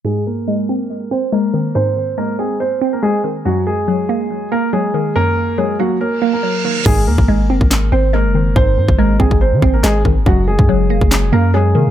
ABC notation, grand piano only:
X:1
M:4/4
L:1/16
Q:1/4=141
K:Abmix
V:1 name="Grand piano"
[A,A]2 [B,B]8 [Cc]2 [B,B]4 | [Cc]4 [B,B]2 [A,A]2 [Cc]3 [B,B] [A,A]2 z2 | [G,G]2 [A,A]8 [B,B]2 [A,A]4 | [B,B]4 [A,A]2 [G,G]2 [B,B]3 [B,B]4- [B,B] |
[A,A]2 [B,B]8 [Cc]2 [B,B]4 | [Cc]4 [B,B]2 [A,A]2 [Cc]3 [B,B] [A,A]2 z2 | [G,G]2 [A,A]8 [B,B]2 [A,A]4 |]